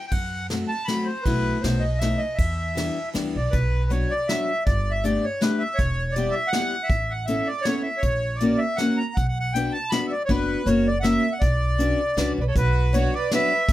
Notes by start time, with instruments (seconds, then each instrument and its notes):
0.07 accordion G5
0.11 upright bass F#2, accordion F#5, kick, ride
0.50 steel-string acoustic guitar F#3 A3 C4 F#4, snare, ride
0.68 accordion A5
0.85 steel-string acoustic guitar F#3 A3, accordion B5, snare, ride
0.89 steel-string acoustic guitar C4 F#4
1.05 accordion C5
1.22 upright bass B1, steel-string acoustic guitar F#3, accordion B4, kick, ride
1.26 steel-string acoustic guitar A3 B3 E4
1.61 upright bass B1, steel-string acoustic guitar F#3 A3 B3, accordion C5, snare, ride
1.66 steel-string acoustic guitar D#4
1.79 accordion D#5
1.98 steel-string acoustic guitar F#3 A3 B3, accordion E5, snare, ride
2.03 steel-string acoustic guitar D#4
2.18 accordion D#5
2.35 upright bass E2, accordion E5, kick, ride
2.75 steel-string acoustic guitar E3 G3 B3 D4, snare, ride
3.13 upright bass D2, steel-string acoustic guitar E3 G3 B3 D4, snare, ride
3.36 upright bass B1, accordion D5
3.51 upright bass B1, accordion B4, kick, closed hi-hat
3.90 steel-string acoustic guitar F#3 B3 D4 F#4, accordion C#5, closed hi-hat
4.10 accordion D5
4.28 steel-string acoustic guitar F#3 B3 D4 F#4, accordion E5, snare, closed hi-hat
4.66 upright bass G1, accordion D5, kick, closed hi-hat
4.91 accordion E5
5.04 steel-string acoustic guitar A3 B3 D4 G4, accordion D5, closed hi-hat
5.24 accordion C#5
5.41 steel-string acoustic guitar A3 B3 D4 G4, accordion B4, snare, closed hi-hat
5.59 accordion E5
5.75 accordion C#5
5.79 upright bass E1, kick, closed hi-hat
6.11 accordion D5
6.16 steel-string acoustic guitar G3 B3 E4 G4, closed hi-hat
6.30 accordion E5
6.47 accordion F#5
6.53 steel-string acoustic guitar G3 B3 E4 G4, snare, closed hi-hat
6.83 accordion E5
6.90 upright bass A1, kick, closed hi-hat
7.10 accordion F#5
7.25 steel-string acoustic guitar B3 C#4 E4 A4, accordion E5, closed hi-hat
7.46 accordion D5
7.61 accordion C#5, snare, closed hi-hat
7.66 steel-string acoustic guitar B3 C#4 E4 A4
7.83 accordion E5
7.97 accordion C#5
8.03 upright bass A#1, kick, closed hi-hat
8.35 accordion D5
8.40 steel-string acoustic guitar A#3 C#4 F#4 A#4, closed hi-hat
8.58 accordion E5
8.76 steel-string acoustic guitar A#3, accordion F#5, snare, closed hi-hat
8.80 steel-string acoustic guitar C#4 F#4 A#4
8.97 accordion A#5
9.15 upright bass B1, accordion F#5, kick, closed hi-hat
9.28 accordion F#5
9.40 accordion F#5
9.53 steel-string acoustic guitar B3 D4 F#4, accordion G5, closed hi-hat
9.57 steel-string acoustic guitar B4
9.72 accordion A5
9.90 steel-string acoustic guitar B3 D4 F#4 B4, accordion B5, snare, closed hi-hat
10.06 accordion E5
10.11 accordion D5
10.25 upright bass F#1, accordion C#5, kick, closed hi-hat
10.29 steel-string acoustic guitar B3 D4 F#4 B4, accordion B4
10.66 upright bass F#1, steel-string acoustic guitar A#3 C#4 F#4 A#4, accordion C#5, closed hi-hat
10.87 accordion D5
11.00 steel-string acoustic guitar A#3 C#4, accordion E5 F#5
11.04 steel-string acoustic guitar F#4 A#4, snare, closed hi-hat
11.32 accordion F#5
11.40 upright bass B1, accordion D5, kick, closed hi-hat
11.78 steel-string acoustic guitar C#4 D4 F#4 B4, closed hi-hat
12.17 upright bass C#2, steel-string acoustic guitar C#4 D4 F#4 B4, snare, closed hi-hat
12.38 upright bass B1, violin B4, accordion D5
12.47 violin A4, accordion C#5
12.55 upright bass B1, violin F#4, accordion B4, kick, closed hi-hat
12.93 steel-string acoustic guitar F#3 B3 D4 F#4 B4, violin F#4, accordion C#5, closed hi-hat
13.14 violin B4, accordion D5
13.31 steel-string acoustic guitar F#3 B3 D4 F#4 B4, violin B4, accordion E5, snare, closed hi-hat
13.69 upright bass G1, kick, closed hi-hat